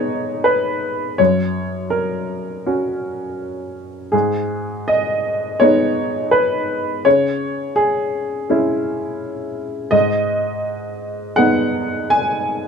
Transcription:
upright piano
Already playing: G#2 G#3 B3 D#4 G#4 C#5 D#5
0.44 B4
1.18 F#2 C#5
1.90 A#4
2.66 C#4 F#4
4.12 G#2 G#4
4.88 D#5
5.60 G#3 B3 D#4 C#5
6.31 B4
7.05 C#3 C#5
7.76 G#4
8.50 G#3 C#4 E4
9.91 G#2 D#5
11.36 G#3 B3 D#4 F#5
12.10 G#5

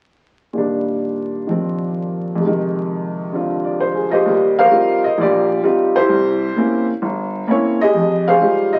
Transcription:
upright piano
0.53 A#2 D#3 G3
0.58 D4
1.47 D#3 F3 C4
2.35 F2 C3
2.43 D#3 G#3
3.32 D3 C4 F4
3.65 D5
3.80 C5
3.94 G#4
4.10 F4 G4 C5 D#5
4.25 D#2 G3
4.59 A#4 C5 F5
4.70 G3 C4 D#4 F4
5.04 D#5
5.18 A#1 D5
5.22 F4 G4
5.63 G3 C4 D#4 F4
5.96 E4 G4 C5
6.09 C2
6.56 A#3 C4 C#4 E4
7.02 G1
7.47 A#3 C4 C#4 E4 C#5
7.81 G4 G#4 D#5
7.95 F2
8.28 G#4 C5 F5
8.41 G3 G#3 D#4 F4
8.73 D#5

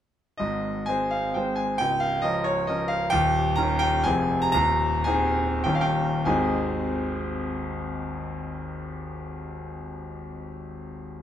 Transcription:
grand piano
0.38 G#1 G#2 D#5
0.86 G#3 C4 C5 G#5
1.11 F5
1.34 G#3 C4 C5 G5
1.56 G#5
1.78 C#1 C#2 G5
2.00 F5
2.22 F3 C#4 A#4 D#5
2.44 C#5
2.67 F3 C#4 A#4 D#5
2.88 F5
3.10 D#1 D#2 G5
3.56 D#3 C#4 A#4 A#5
3.79 G5
4.04 F1 F2 C3 C4 G#4 G#5
4.42 A#5
4.52 D#1 D#2 A#5
5.04 D#3 C4 G#4 G#5
5.64 D#1 D#2 D#3 C#4 A#4 G5
5.75 F5
5.81 G5
6.25 G#1 D#2 G#3 C4 D#4 G#4 G#5

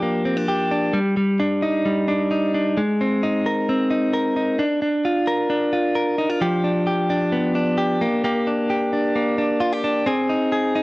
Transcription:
clean electric guitar
Already playing: F3 D4 G4
0.02 A#3
0.25 C4
0.37 D4
0.48 G4
0.71 D4
0.93 G3
1.17 G3
1.40 D4
1.62 D#4
1.85 G3
2.08 D4
2.31 D#4
2.54 D4
2.77 G#3
3.01 C4
3.23 D#4
3.46 A#4
3.69 C4
3.90 D#4
4.13 A#4
4.36 D#4
4.59 D4
4.82 D4
5.05 F4
5.27 A#4
5.50 D4
5.73 F4
5.95 A#4
6.18 D#4
6.30 F4
6.41 F3 G4
6.64 D4
6.87 G4
7.10 D4
7.32 B3
7.55 D4
7.78 G4
8.01 A#3
8.24 A#3 G4
8.47 D4
8.70 G4
8.93 D4
9.16 A#3
9.38 D4
9.61 F4
9.73 G4
9.84 D4
10.06 C4 G#4
10.29 D#4
10.52 G#4
10.76 D#4

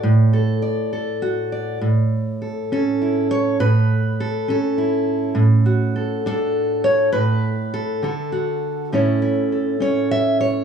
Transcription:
steel-string acoustic guitar
Already playing: A4
0.03 A2
0.33 A4
0.62 D5
0.93 A4
1.22 F#4
1.52 D5
1.81 A2
2.42 A4
2.72 C#4 A4
3.02 E4
3.31 C#5
3.60 A2 B4
4.20 A4
4.48 C#4 A4
4.78 E4
5.35 A2
5.66 F#4
5.96 A4
6.26 D4 A4
6.84 C#5
7.12 A2 B4
7.74 A4
8.03 D3 A4
8.32 F#4
8.92 A2 C#4 E4 A4 C#5
9.22 E4
9.52 A4
9.80 C#4 C#5
10.11 E5
10.41 C#5

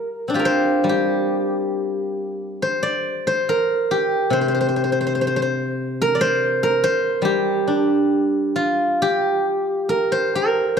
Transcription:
guzheng
Already playing: A#4
0.28 C4 D4
0.34 F4 G4
0.39 A#4
0.45 C5
0.84 G3
0.89 G4
2.62 C5
2.83 D5
3.27 C5
3.49 A#4
3.91 G4
4.30 C3 C5
4.41 C5
4.48 C5
4.55 C5
4.61 C5
4.69 C5
4.76 C5
4.84 C5
4.92 C5
5.01 C5
5.07 C5
5.15 C5
5.21 C5
5.27 C5
5.36 C5
5.42 C5
6.02 A#4
6.15 D5
6.21 C5
6.63 A#4
6.84 C5
7.22 G3 G4
7.68 D4
8.56 F4
9.02 G4
9.89 A#4
10.12 C5
10.35 A#4
10.77 C5

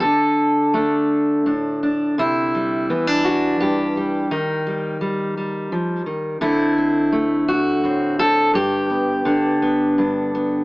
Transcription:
steel-string acoustic guitar
0.00 D3 A4
0.74 A3 D4
1.46 A2 D4
1.83 D4
2.18 C3 E4
2.55 G3
2.90 E3 B3
3.07 D4
3.25 F#4
3.60 G2 G4
3.97 G3
4.31 D#3 D#4
4.67 G3
5.01 G3
5.37 G3
5.72 F3
6.06 D#3
6.41 D3 A3 C4 E4
6.78 C4
7.12 A3
7.48 F#4
7.84 A2 C4
8.19 A4
8.54 G2 G4
8.90 B3
9.25 D3 D4
9.62 B3
9.98 G2 D4
10.35 B3

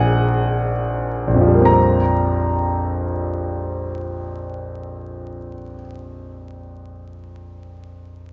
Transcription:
grand piano
Already playing: A#1 D#3 A#3 C4 G#4 F#5 G#5
1.27 A#1
1.34 F2
1.41 F3
1.47 G3
1.54 A#3
1.61 C4
1.65 A#5

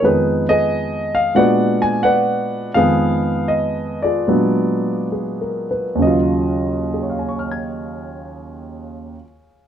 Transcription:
grand piano
Already playing: A#4
0.02 F2 D#3 G#3 B3 D#4 G#4 B4
0.49 G#4 B4 D#5
1.15 F5
1.35 A#2 G#3 B3 D4 F#4 B4 D5 F#5
1.82 G#5
2.03 B4 D5 F#5
2.74 F2 D#3 G#3 B3 G#4 B4 F5
3.48 D#5
4.02 F4 G#4 D5
4.28 A#2 F#3 G#3 B3 D4
5.12 G#4
5.41 A#4
5.71 B4
5.95 D#2 C#3
6.02 F#3 D#5
6.07 F4
6.94 G#4
7.02 C#5
7.10 F5
7.19 G#5
7.28 C#6
7.39 F6
7.51 G#6

